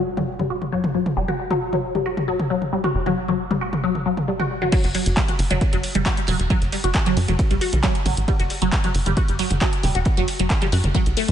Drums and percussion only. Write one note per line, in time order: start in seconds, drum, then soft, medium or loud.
0.17 mid tom medium
0.39 mid tom medium
0.62 mid tom medium
0.84 mid tom medium
1.06 mid tom medium
1.28 mid tom medium
1.51 mid tom medium
1.73 mid tom medium
1.95 mid tom medium
2.17 mid tom medium
2.40 mid tom medium
2.62 mid tom medium
2.84 mid tom medium
3.06 mid tom medium
3.28 mid tom medium
3.51 mid tom medium
3.73 mid tom medium
3.95 mid tom medium
4.17 mid tom medium
4.40 mid tom medium
4.62 mid tom medium
4.72 kick loud
4.72 closed hi-hat medium
4.72 crash loud
4.72 ride medium
4.84 snare soft
4.84 closed hi-hat medium
4.95 open hi-hat loud
4.95 ride medium
5.06 closed hi-hat medium
5.16 kick loud
5.16 snare loud
5.16 clap loud
5.16 closed hi-hat medium
5.16 ride medium
5.28 closed hi-hat medium
5.28 mid tom medium
5.39 snare soft
5.39 open hi-hat loud
5.39 ride medium
5.51 closed hi-hat medium
5.51 mid tom medium
5.61 kick loud
5.61 closed hi-hat medium
5.61 ride medium
5.73 closed hi-hat medium
5.83 open hi-hat loud
5.83 ride medium
5.95 closed hi-hat medium
5.95 mid tom medium
5.95 ride soft
6.06 kick loud
6.06 snare loud
6.06 clap loud
6.06 closed hi-hat medium
6.06 ride medium
6.17 closed hi-hat medium
6.17 ride soft
6.27 snare medium
6.27 open hi-hat loud
6.27 mid tom medium
6.27 ride medium
6.39 snare soft
6.39 closed hi-hat medium
6.50 kick loud
6.50 closed hi-hat medium
6.50 ride medium
6.62 snare soft
6.62 closed hi-hat medium
6.72 open hi-hat loud
6.72 ride medium
6.84 snare soft
6.84 closed hi-hat medium
6.93 kick loud
6.93 snare loud
6.93 clap loud
6.93 closed hi-hat medium
6.93 ride medium
7.06 clap soft
7.06 closed hi-hat medium
7.06 mid tom medium
7.06 ride soft
7.17 open hi-hat loud
7.17 ride medium
7.28 closed hi-hat medium
7.28 mid tom medium
7.39 kick loud
7.39 closed hi-hat medium
7.39 ride loud
7.51 closed hi-hat medium
7.51 ride soft
7.61 open hi-hat loud
7.61 ride medium
7.73 closed hi-hat medium
7.73 mid tom medium
7.83 kick loud
7.83 snare loud
7.83 clap loud
7.83 closed hi-hat medium
7.83 ride loud
7.95 closed hi-hat medium
7.95 ride soft
8.05 open hi-hat loud
8.05 mid tom medium
8.05 ride medium
8.17 closed hi-hat medium
8.28 kick loud
8.28 closed hi-hat medium
8.28 ride medium
8.39 snare soft
8.39 closed hi-hat medium
8.50 open hi-hat loud
8.50 ride medium
8.62 closed hi-hat medium
8.72 kick loud
8.72 snare loud
8.72 clap loud
8.72 closed hi-hat medium
8.72 ride medium
8.84 closed hi-hat medium
8.84 mid tom medium
8.94 snare soft
8.94 open hi-hat loud
8.94 ride medium
9.06 closed hi-hat medium
9.06 mid tom medium
9.17 kick loud
9.17 closed hi-hat medium
9.17 ride medium
9.28 closed hi-hat medium
9.39 open hi-hat loud
9.39 ride medium
9.50 closed hi-hat medium
9.50 mid tom medium
9.50 ride soft
9.61 kick loud
9.61 snare loud
9.61 clap loud
9.61 closed hi-hat medium
9.61 ride medium
9.73 closed hi-hat medium
9.73 ride soft
9.83 snare medium
9.83 open hi-hat loud
9.83 mid tom medium
9.83 ride medium
9.95 snare soft
9.95 closed hi-hat medium
10.05 kick loud
10.05 closed hi-hat medium
10.05 ride medium
10.17 snare soft
10.17 closed hi-hat medium
10.28 open hi-hat loud
10.28 ride medium
10.39 snare soft
10.39 closed hi-hat medium
10.50 kick loud
10.50 snare loud
10.50 clap loud
10.50 closed hi-hat medium
10.50 ride medium
10.61 clap soft
10.61 closed hi-hat medium
10.61 mid tom medium
10.61 ride soft
10.72 open hi-hat loud
10.72 ride medium
10.84 closed hi-hat medium
10.84 mid tom loud
10.94 kick loud
10.94 closed hi-hat medium
10.94 ride medium
11.06 closed hi-hat medium
11.06 ride soft
11.17 open hi-hat loud
11.17 ride medium
11.28 closed hi-hat medium
11.28 mid tom loud